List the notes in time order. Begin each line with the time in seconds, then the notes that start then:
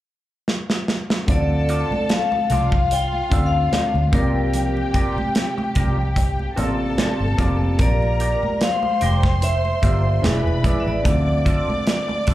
0.48 snare
0.70 snare
0.88 snare
1.10 snare
1.27 D2 D3 C4 F4 A4 D5 A5, kick, closed hi-hat, muted conga, low conga
1.31 D5
1.69 C4 F4 A4 D5, closed hi-hat
1.91 muted fingered electric bass stroke, high conga
2.09 F5, muted clean electric guitar stroke, snare, closed hi-hat
2.32 muted clean electric guitar stroke, muted conga, high conga
2.50 C2 C4 F4 A4 D5 F5, closed hi-hat, high conga, low conga
2.72 muted clean electric guitar stroke, kick
2.91 G5, muted clean electric guitar stroke, closed hi-hat
3.13 muted conga
3.30 D2 D3 C4 F4 A4 D5 E5, kick, closed hi-hat
3.46 F5
3.54 muted clean electric guitar stroke
3.72 C4 F4 A4 D5, muted fingered electric bass stroke, snare, closed hi-hat, muted conga, high conga
3.94 D2, muted clean electric guitar stroke, muted conga
4.12 C2 C3 A#3 C4 F4 G4 A#4 D5 G5, kick, closed hi-hat, high conga, low conga
4.36 muted clean electric guitar stroke
4.54 closed hi-hat, muted conga, low conga
4.77 muted conga
4.94 C4 F4 A#4 D5, kick, closed hi-hat
5.16 muted fingered electric bass stroke, high conga
5.35 muted clean electric guitar stroke, snare, closed hi-hat
5.58 muted clean electric guitar stroke, muted conga, high conga
5.75 C2 C4 F4 A#4 D5, kick, closed hi-hat, high conga, low conga
5.98 muted clean electric guitar stroke
6.16 muted clean electric guitar stroke, kick, closed hi-hat
6.39 muted conga
6.56 A1 C3 A#3 C4 F4 A4 A#4 D5 E5 A5, closed hi-hat
6.79 muted clean electric guitar stroke
6.97 C4 F4 A#4 D5, snare, closed hi-hat, muted conga, high conga
7.19 G1, muted clean electric guitar stroke
7.37 F1 C3 A#3 C4 F4 A#4 D5, kick, closed hi-hat, high conga, low conga
7.60 muted clean electric guitar stroke
7.79 A#1 A#3 F4 G4 A#4 D5 A#5, kick, closed hi-hat, low conga
8.02 muted conga
8.20 D4 G4 A#4 D5, closed hi-hat
8.43 muted fingered electric bass stroke, high conga
8.61 C5 F5 C6, muted clean electric guitar stroke, snare, closed hi-hat
8.83 muted clean electric guitar stroke, muted conga, high conga
9.01 F1 D4 G4 A#4 D5 G5, closed hi-hat, high conga, low conga
9.23 kick, snare
9.42 E5, muted clean electric guitar stroke, closed hi-hat
9.65 muted conga
9.82 G1 A#3 D4 F4 G4 A#4 D5 E5, kick, closed hi-hat
10.05 muted clean electric guitar stroke
10.22 E1 E3 B3 E4 G#4 B4 D5 B5, snare, closed hi-hat, muted conga, high conga
10.46 E1, muted clean electric guitar stroke, muted conga
10.63 E3 B3 E4 G#4 D5, kick, closed hi-hat, high conga, low conga
10.80 E5
10.86 A1 D5, muted clean electric guitar stroke
11.03 D2 D3 C4 F4 D5 E5 D6, kick, closed hi-hat, muted conga, low conga
11.28 muted conga
11.45 C4 F4 A4 E5, kick, closed hi-hat
11.68 muted fingered electric bass stroke, high conga
11.87 muted clean electric guitar stroke, snare, closed hi-hat, muted conga
12.08 muted clean electric guitar stroke, muted conga, high conga
12.27 C2 C4 F4 A4 E5, kick, closed hi-hat, high conga, low conga